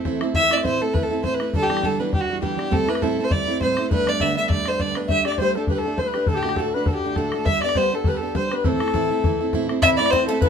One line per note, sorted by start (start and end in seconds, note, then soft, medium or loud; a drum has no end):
0.00 0.18 A3 medium
0.00 0.18 A4 medium
0.00 0.21 A4 medium
0.05 0.21 E3 medium
0.05 0.21 A3 medium
0.05 0.22 C4 medium
0.05 0.20 E4 medium
0.05 bodhran medium
0.21 0.35 A3 soft
0.21 0.35 C4 soft
0.21 0.35 E4 medium
0.21 bodhran medium
0.34 0.51 A2 medium
0.34 0.51 E3 medium
0.34 0.50 A3 medium
0.34 0.51 C4 medium
0.34 0.49 E4 medium
0.34 0.54 E5 loud
0.34 bodhran medium
0.51 0.64 A3 soft
0.51 0.64 C4 soft
0.51 0.64 E4 medium
0.51 0.64 D5 medium
0.51 bodhran medium
0.58 bodhran medium
0.64 0.80 A2 medium
0.64 0.81 E3 medium
0.64 0.81 A3 medium
0.64 0.81 C4 medium
0.64 0.79 E4 medium
0.64 0.83 C5 medium
0.64 bodhran medium
0.80 0.95 A3 soft
0.80 0.94 C4 soft
0.80 0.94 E4 medium
0.80 0.95 A4 medium
0.94 1.10 E3 soft
0.94 1.10 A3 medium
0.94 1.11 C4 soft
0.94 1.09 E4 medium
0.94 1.04 B4 medium
0.94 bodhran medium
1.03 1.24 A4 medium
1.10 1.24 A3 soft
1.10 1.24 C4 soft
1.10 1.24 E4 soft
1.24 1.40 A2 medium
1.24 1.40 E3 medium
1.24 1.40 A3 medium
1.24 1.40 C4 medium
1.24 1.39 E4 medium
1.24 1.35 C5 medium
1.24 bodhran medium
1.34 1.54 B4 medium
1.40 1.54 A3 soft
1.40 1.55 C4 soft
1.40 1.54 E4 soft
1.40 bodhran medium
1.54 1.70 G2 medium
1.54 1.70 D3 medium
1.54 1.71 E3 medium
1.54 1.70 G3 medium
1.54 1.70 B3 medium
1.54 1.69 D4 medium
1.54 1.64 A4 loud
1.54 bodhran medium
1.62 1.86 G4 loud
1.70 1.83 E3 soft
1.70 1.84 G3 soft
1.70 1.84 B3 medium
1.70 1.83 D4 soft
1.70 bodhran medium
1.77 bodhran medium
1.83 2.00 G2 medium
1.83 2.00 D3 medium
1.83 2.00 E3 medium
1.83 2.00 G3 medium
1.83 2.00 B3 medium
1.83 1.99 D4 medium
1.83 2.01 A4 medium
1.83 bodhran medium
1.99 2.10 E3 soft
1.99 2.12 G3 soft
1.99 2.13 B3 soft
1.99 2.13 D4 soft
1.99 2.13 B4 medium
2.12 2.28 E3 medium
2.12 2.29 G3 medium
2.12 2.28 B3 medium
2.12 2.27 D4 medium
2.12 2.22 G4 medium
2.12 bodhran medium
2.20 2.41 F#4 medium
2.29 2.41 E3 soft
2.29 2.41 G3 soft
2.29 2.42 B3 soft
2.29 2.42 D4 soft
2.42 2.58 G2 medium
2.42 2.58 D3 medium
2.42 2.59 E3 medium
2.42 2.58 G3 medium
2.42 2.57 B3 medium
2.42 2.56 D4 medium
2.42 2.73 G4 medium
2.42 bodhran medium
2.58 2.71 E3 soft
2.58 2.70 G3 soft
2.58 2.71 B3 soft
2.58 2.72 D4 soft
2.58 bodhran medium
2.71 2.88 A2 medium
2.71 2.88 G3 medium
2.71 2.88 A3 medium
2.71 2.88 C4 medium
2.71 2.86 E4 medium
2.71 2.91 A4 loud
2.71 bodhran medium
2.88 3.02 A3 soft
2.88 3.01 C4 soft
2.88 3.02 E4 medium
2.88 3.03 B4 medium
2.88 bodhran medium
2.95 bodhran medium
3.01 3.18 A2 medium
3.01 3.18 G3 medium
3.01 3.18 A3 medium
3.01 3.18 C4 medium
3.01 3.17 E4 medium
3.01 3.25 A4 medium
3.01 bodhran medium
3.18 3.32 A3 soft
3.18 3.32 C4 soft
3.18 3.32 E4 soft
3.24 3.33 C5 loud
3.31 3.48 G3 medium
3.31 3.47 A3 medium
3.31 3.48 C4 medium
3.31 3.46 E4 medium
3.31 3.61 D5 loud
3.31 bodhran medium
3.48 3.62 A3 soft
3.48 3.62 C4 soft
3.48 3.61 E4 soft
3.61 3.78 A2 medium
3.61 3.78 G3 medium
3.61 3.78 A3 medium
3.61 3.78 C4 medium
3.61 3.77 E4 medium
3.61 3.89 C5 medium
3.61 bodhran medium
3.77 3.91 A3 soft
3.77 3.91 C4 soft
3.77 3.91 E4 soft
3.77 bodhran medium
3.90 4.07 G2 medium
3.90 4.07 D3 medium
3.90 4.07 G3 medium
3.90 4.06 A3 medium
3.90 4.07 B3 medium
3.90 4.05 D4 medium
3.90 4.10 B4 loud
3.90 bodhran medium
4.06 4.21 G3 soft
4.06 4.21 A3 soft
4.06 4.21 B3 soft
4.06 4.20 D4 soft
4.06 4.23 D5 medium
4.06 bodhran medium
4.20 4.37 G2 medium
4.20 4.37 D3 medium
4.20 4.37 G3 medium
4.20 4.37 A3 medium
4.20 4.38 B3 medium
4.20 4.36 D4 medium
4.20 4.36 E5 medium
4.20 bodhran medium
4.37 4.49 G3 soft
4.37 4.51 A3 soft
4.37 4.50 B3 soft
4.37 4.50 D4 soft
4.37 4.49 E5 medium
4.50 4.67 G3 medium
4.50 4.66 A3 medium
4.50 4.67 B3 medium
4.50 4.66 D4 medium
4.50 4.69 D5 medium
4.50 bodhran medium
4.66 4.79 G3 soft
4.66 4.80 A3 soft
4.66 4.80 B3 soft
4.66 4.80 D4 soft
4.66 4.82 C5 medium
4.66 bodhran medium
4.80 4.96 G2 medium
4.80 4.96 D3 medium
4.80 4.96 G3 medium
4.80 4.96 A3 medium
4.80 4.97 B3 medium
4.80 4.95 D4 medium
4.80 4.98 D5 medium
4.80 bodhran medium
4.95 5.09 G3 soft
4.95 5.09 A3 soft
4.95 5.09 B3 soft
4.95 5.09 D4 soft
4.95 5.09 B4 medium
4.95 bodhran medium
5.08 5.26 G3 medium
5.08 5.25 A3 medium
5.08 5.26 D4 medium
5.08 5.24 G4 medium
5.08 5.24 E5 loud
5.08 5.25 E5 loud
5.08 bodhran medium
5.24 5.39 A3 soft
5.24 5.39 D4 soft
5.24 5.39 G4 soft
5.24 5.40 D5 medium
5.24 5.39 D5 medium
5.24 bodhran medium
5.32 bodhran soft
5.38 5.56 G3 medium
5.38 5.55 A3 medium
5.38 5.56 D4 medium
5.38 5.54 G4 medium
5.38 5.57 C5 medium
5.38 5.55 C5 medium
5.38 bodhran medium
5.55 5.69 A3 soft
5.55 5.69 D4 soft
5.55 5.69 G4 medium
5.55 5.68 A4 medium
5.55 5.69 A4 medium
5.67 5.85 G3 medium
5.67 5.85 A3 medium
5.67 5.85 D4 medium
5.67 5.75 B4 medium
5.67 5.79 B4 medium
5.67 bodhran medium
5.72 5.84 G4 medium
5.72 5.96 A4 medium
5.78 6.00 A4 medium
5.85 5.99 A3 soft
5.85 5.98 D4 soft
5.85 5.98 G4 soft
5.97 6.14 G3 medium
5.97 6.14 A3 medium
5.97 6.15 D4 medium
5.97 6.13 G4 medium
5.97 6.01 C5 medium
5.97 6.09 C5 medium
5.97 bodhran medium
6.05 6.30 B4 medium
6.05 6.28 B4 medium
6.14 6.28 A3 soft
6.14 6.28 D4 soft
6.14 6.28 G4 medium
6.14 bodhran medium
6.27 6.44 D2 medium
6.27 6.44 A2 medium
6.27 6.44 D3 medium
6.27 6.44 A3 medium
6.27 6.44 D4 medium
6.27 6.43 F#4 medium
6.27 6.36 A4 medium
6.27 6.38 A4 medium
6.27 bodhran medium
6.34 6.58 G4 medium
6.34 6.59 G4 medium
6.43 6.57 D3 soft
6.43 6.58 A3 medium
6.43 6.58 D4 soft
6.43 6.57 F#4 medium
6.43 bodhran medium
6.49 bodhran medium
6.56 6.74 D2 medium
6.56 6.74 A2 medium
6.56 6.74 D3 medium
6.56 6.74 A3 medium
6.56 6.74 D4 medium
6.56 6.73 F#4 medium
6.56 6.76 A4 medium
6.56 6.74 A4 medium
6.56 bodhran medium
6.74 6.87 D3 soft
6.74 6.88 A3 soft
6.74 6.88 D4 soft
6.74 6.87 F#4 medium
6.74 6.88 B4 medium
6.74 6.89 B4 medium
6.86 7.04 D3 medium
6.86 7.04 D4 medium
6.86 6.96 A4 medium
6.86 6.93 A4 medium
6.86 bodhran medium
6.90 7.04 A3 medium
6.90 7.03 F#4 medium
6.90 7.17 G4 medium
6.94 7.17 G4 medium
7.04 7.16 D3 soft
7.04 7.17 A3 soft
7.04 7.16 D4 soft
7.04 7.17 F#4 soft
7.16 7.33 D2 medium
7.16 7.33 A2 medium
7.16 7.33 D3 medium
7.16 7.32 A3 medium
7.16 7.33 D4 medium
7.16 7.31 F#4 medium
7.16 7.47 A4 medium
7.16 7.48 A4 medium
7.16 bodhran medium
7.32 7.46 D3 soft
7.32 7.47 A3 soft
7.32 7.46 D4 soft
7.32 7.46 F#4 soft
7.32 bodhran medium
7.45 7.62 G3 medium
7.45 7.63 B3 medium
7.45 7.63 D4 medium
7.45 7.62 G4 medium
7.45 7.62 E5 loud
7.45 7.65 E5 medium
7.45 bodhran medium
7.62 7.76 B3 soft
7.62 7.76 D4 soft
7.62 7.76 G4 soft
7.62 7.78 D5 medium
7.62 bodhran medium
7.69 bodhran medium
7.75 7.92 G3 medium
7.75 7.92 B3 medium
7.75 7.92 D4 medium
7.75 7.90 G4 medium
7.75 7.92 C5 medium
7.75 7.96 C5 medium
7.75 bodhran medium
7.92 8.05 B3 soft
7.92 8.05 D4 medium
7.92 8.05 G4 soft
7.92 8.09 A4 medium
7.92 8.10 A4 medium
8.04 8.22 G3 medium
8.04 8.22 B3 medium
8.04 8.21 D4 medium
8.04 8.20 G4 medium
8.04 8.17 B4 medium
8.04 bodhran medium
8.09 8.18 B4 medium
8.15 8.38 A4 medium
8.15 8.36 A4 medium
8.21 8.34 B3 soft
8.21 8.34 D4 soft
8.21 8.35 G4 soft
8.35 8.51 G3 medium
8.35 8.51 B3 medium
8.35 8.51 D4 medium
8.35 8.49 G4 medium
8.35 8.47 C5 medium
8.35 8.56 C5 medium
8.35 bodhran medium
8.48 8.64 G4 medium
8.48 8.66 B4 medium
8.48 8.53 C5 medium
8.48 bodhran medium
8.52 8.65 B3 soft
8.52 8.65 D4 soft
8.52 8.70 B4 medium
8.64 8.80 A2 medium
8.64 8.81 E3 medium
8.64 8.80 A3 medium
8.64 8.81 C4 medium
8.64 8.79 E4 medium
8.64 9.53 A4 medium
8.64 9.55 A4 loud
8.64 bodhran medium
8.80 8.94 A3 soft
8.80 8.94 C4 soft
8.80 8.94 E4 medium
8.80 bodhran medium
8.88 bodhran medium
8.94 9.10 A2 medium
8.94 9.10 E3 medium
8.94 9.11 A3 medium
8.94 9.11 C4 medium
8.94 9.09 E4 medium
8.94 bodhran medium
9.11 9.25 A3 medium
9.11 9.24 C4 soft
9.11 9.24 E4 soft
9.24 9.40 E3 medium
9.24 9.40 A3 medium
9.24 9.41 C4 medium
9.24 9.39 E4 medium
9.24 bodhran medium
9.41 9.53 A3 soft
9.41 9.53 C4 soft
9.41 9.54 E4 medium
9.53 9.69 A2 medium
9.53 9.70 E3 medium
9.53 9.69 A3 medium
9.53 9.70 C4 medium
9.53 9.67 E4 medium
9.53 bodhran medium
9.68 9.82 A3 soft
9.68 9.82 C4 soft
9.68 9.82 E4 soft
9.68 bodhran medium
9.82 9.98 A2 medium
9.82 9.99 E3 medium
9.82 9.99 A3 medium
9.82 9.99 C4 medium
9.82 10.11 E4 medium
9.82 9.98 E4 medium
9.82 9.99 E5 medium
9.82 9.90 E5 loud
9.82 bodhran medium
9.97 10.12 A3 soft
9.97 10.12 C4 soft
9.97 10.12 E4 medium
9.97 10.12 D5 loud
9.97 10.13 D5 medium
9.97 bodhran medium
10.06 bodhran medium
10.10 10.28 A2 medium
10.10 10.28 E3 medium
10.10 10.27 A3 medium
10.10 10.28 C4 medium
10.10 10.29 C4 medium
10.10 10.27 E4 medium
10.10 10.27 C5 loud
10.10 10.26 C5 medium
10.10 bodhran medium
10.27 10.41 A3 medium
10.27 10.42 A3 soft
10.27 10.42 C4 soft
10.27 10.41 E4 soft
10.27 10.40 A4 medium
10.27 10.42 A4 medium
10.41 10.49 E3 medium
10.41 10.49 A3 medium
10.41 10.49 B3 medium
10.41 10.49 C4 medium
10.41 10.49 E4 medium
10.41 10.47 B4 loud
10.41 10.49 B4 medium
10.41 bodhran medium